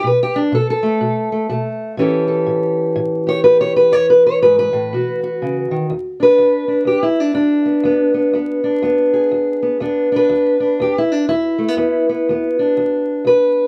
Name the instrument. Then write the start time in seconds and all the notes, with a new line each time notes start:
steel-string acoustic guitar
0.04 B2 B4
0.23 G4
0.36 D4
0.52 B2 A4
0.70 A4
0.83 A3
1.01 B2
1.32 A3
1.49 B2 A3
1.97 A2 E3 C#4 G4 A4
2.28 A4
2.46 A2
2.96 A2
3.27 G4 C#5
3.44 A2 B4
3.61 C#5
3.76 B4
3.92 E2 C#5
4.10 B4
4.27 C#5
4.42 G#2 B4
4.59 B4
4.73 A2
4.93 B2 F#4
5.23 F#4
5.42 C#3
5.71 D#3
5.90 E2
6.20 D4 B4
6.38 E2
6.68 D4
6.85 E2 G4
7.03 E4
7.20 D4
7.34 E2 D4
7.66 B3
7.84 E2 B3
8.14 B3
8.33 E2 B3
8.64 D4
8.82 E2 B3
9.14 G#4
9.31 E2
9.63 B3
9.80 E2 B3 D4
10.12 D4
10.16 B4
10.29 E2
10.60 D4
10.80 E2 G4
10.98 E4
11.12 D4
11.29 E2 E4
11.58 A3
11.68 B3
11.77 E2 B3
12.09 B3
12.29 E2 B3
12.59 D4
12.77 E2
13.25 E2 B4